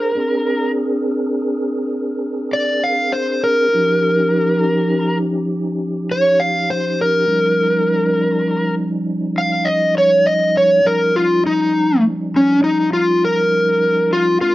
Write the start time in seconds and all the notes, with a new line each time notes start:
Already playing: D4 G#4 A#4 C5
0.15 C4 D4 G#4 A#4
2.53 D5
2.83 F5
3.12 C5
3.44 A#4
3.73 F3 C#4 D#4 G4
6.11 C#5
6.40 F5
6.70 C5
7.01 A#4
7.27 F3 G3 C#4 D#4
9.38 F5
9.65 D#5
9.98 C#5
10.26 D#5
10.57 C#5
10.85 F3 G3 C#4 D#4 A#4
11.16 F4
11.46 D#4
12.36 C#4
12.64 D#4
12.93 F4
13.25 A#4
14.13 F4
14.41 G#3 C4 D4 F4 A#4